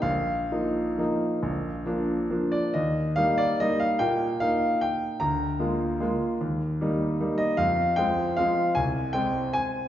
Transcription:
<<
  \new Staff \with { instrumentName = "Grand piano" } { \time 3/4 \key ees \major \tempo 4 = 148 f''2.~ | f''2 r8 d''8 | ees''4 f''8 d''8 ees''8 f''8 | g''4 f''4 g''4 |
bes''2.~ | bes''2 r8 ees''8 | f''4 g''4 f''4 | aes''4 g''4 aes''4 | }
  \new Staff \with { instrumentName = "Grand piano" } { \time 3/4 \key ees \major bes,,4 <f bes ees'>4 <f bes ees'>4 | bes,,4 <f bes d'>4 <f bes d'>4 | ees,4 <g bes ees'>4 <g bes ees'>4 | bes,4 <bes ees'>2 |
d,4 <aes bes f'>4 <aes bes f'>4 | ees,4 <g bes ees'>4 <g bes ees'>4 | f,4 <f aes c'>4 <f aes c'>4 | c,4 <aes c'>2 | }
>>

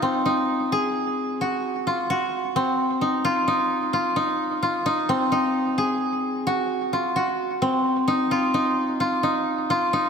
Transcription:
\new Staff \with { instrumentName = "Koto" } { \time 11/8 \key aes \mixolydian \tempo 4 = 130 c'8 ees'4 aes'4 r8 ges'4 f'8 ges'4 | c'4 ees'8 f'8 ees'4 f'8 ees'4 f'8 ees'8 | c'8 ees'4 aes'4 r8 ges'4 f'8 ges'4 | c'4 ees'8 f'8 ees'4 f'8 ees'4 f'8 ees'8 | }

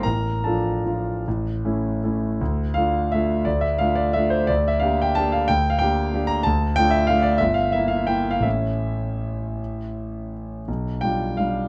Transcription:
\new Staff \with { instrumentName = "Grand piano" } { \time 3/4 \key d \minor \tempo 4 = 168 << { <bes' bes''>4 <a' a''>2~ | <a' a''>2~ <a' a''>8 r8 | r4 f''4 e''4 | d''8 e''8 f''8 d''8 e''8 c''8 |
\tuplet 3/2 { d''4 e''8 f''4 g''8 } a''8 f''8 | \tuplet 3/2 { g''4 f''8 } g''4. bes''8 | a''4 g''8 e''8 f''8 d''8 | e''8 f''8 e''8 f''8 \tuplet 3/2 { g''4 f''8 } |
e''2.~ | e''2 r4 | r4 g''4 f''4 | } \\ { a,,4 <f d' f'>4 <f d' f'>4 | a,,4 <a cis' e'>4 <a cis' e'>4 | d,4 <a d' f'>4 <a d' f'>4 | d,4 <a d' f'>4 <a d' f'>4 |
d,4 <bes d' g'>4 <bes d' g'>4 | d,4 <bes d' g'>4 <bes d' g'>4 | d,4 <a d' f'>4 <a d' f'>4 | g,,4 <bes e'>4 <bes e'>4 |
<a,, a cis' e'>2.~ | <a,, a cis' e'>2. | b,,4 <g d' f'>4 <g d' f'>4 | } >> }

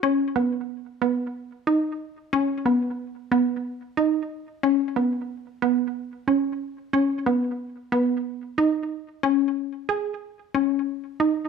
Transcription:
\new Staff \with { instrumentName = "Synth arpeggio sound" } { \time 7/8 \key b \major \tempo 4 = 91 cis'8 b4 b4 dis'4 | cis'8 b4 b4 dis'4 | cis'8 b4 b4 cis'4 | cis'8 b4 b4 dis'4 |
cis'4 gis'4 cis'4 dis'8 | }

